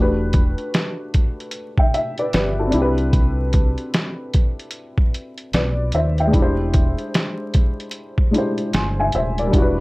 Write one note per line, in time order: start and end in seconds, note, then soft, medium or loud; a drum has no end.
0.00 0.54 E1 medium
0.00 2.66 A3 medium
0.00 2.68 D4 medium
0.00 1.51 F#4 medium
0.00 1.53 G4 medium
0.00 1.55 B4 medium
0.33 kick medium
0.33 closed hi-hat medium
0.58 closed hi-hat soft
0.74 snare loud
0.74 closed hi-hat medium
1.14 kick medium
1.14 closed hi-hat medium
1.40 closed hi-hat soft
1.51 closed hi-hat medium
1.78 1.93 E5 medium
1.78 1.93 G5 medium
1.78 kick medium
1.94 2.17 E5 medium
1.94 closed hi-hat medium
2.18 2.33 B4 medium
2.18 2.33 D5 medium
2.18 closed hi-hat soft
2.33 2.71 G1 medium
2.33 2.58 G4 medium
2.33 2.57 B4 medium
2.33 snare loud
2.33 closed hi-hat medium
2.59 2.97 F#4 medium
2.59 2.97 A4 medium
2.67 5.86 C4 medium
2.67 5.88 D4 medium
2.72 3.74 C2 medium
2.72 5.90 E4 medium
2.72 closed hi-hat medium
2.78 5.92 G4 medium
2.78 5.53 B4 medium
2.98 closed hi-hat soft
3.13 kick loud
3.13 closed hi-hat medium
3.53 kick medium
3.53 closed hi-hat medium
3.78 closed hi-hat soft
3.94 snare loud
3.94 closed hi-hat loud
4.34 kick medium
4.34 closed hi-hat medium
4.59 closed hi-hat soft
4.71 closed hi-hat medium
4.98 kick medium
5.14 closed hi-hat medium
5.38 closed hi-hat soft
5.53 5.91 B1 medium
5.53 5.92 B4 medium
5.53 5.92 D5 medium
5.53 snare loud
5.53 closed hi-hat medium
5.92 6.31 D#2 loud
5.92 6.18 C5 medium
5.92 6.18 E5 medium
5.92 closed hi-hat medium
6.18 6.57 E5 medium
6.18 6.57 G5 medium
6.18 closed hi-hat soft
6.27 8.26 G#3 medium
6.27 8.28 D4 medium
6.33 6.94 E1 loud
6.33 8.30 E4 medium
6.33 kick medium
6.33 closed hi-hat medium
6.38 8.32 G4 medium
6.38 8.34 C5 medium
6.74 kick medium
6.74 closed hi-hat medium
6.98 closed hi-hat soft
7.14 snare loud
7.14 closed hi-hat loud
7.54 kick medium
7.54 closed hi-hat medium
7.80 closed hi-hat soft
7.91 closed hi-hat medium
8.18 kick medium
8.31 9.52 G#3 medium
8.31 9.49 D4 medium
8.31 9.53 E4 soft
8.31 closed hi-hat medium
8.36 9.55 G4 soft
8.36 8.76 C5 medium
8.58 closed hi-hat soft
8.73 9.11 G1 loud
8.73 8.98 G#5 medium
8.73 8.97 C6 medium
8.73 snare loud
8.73 closed hi-hat medium
9.00 9.14 E5 medium
9.00 9.13 G#5 medium
9.12 9.51 D#1 medium
9.12 9.38 C5 medium
9.12 9.38 E5 medium
9.12 closed hi-hat medium
9.38 9.77 A#4 medium
9.38 9.77 D5 medium
9.38 closed hi-hat soft
9.47 9.80 G3 medium
9.47 9.80 D4 medium
9.53 9.80 E1 loud
9.53 9.80 E4 medium
9.53 kick loud
9.53 closed hi-hat medium
9.58 9.80 F#4 medium
9.62 9.80 B4 medium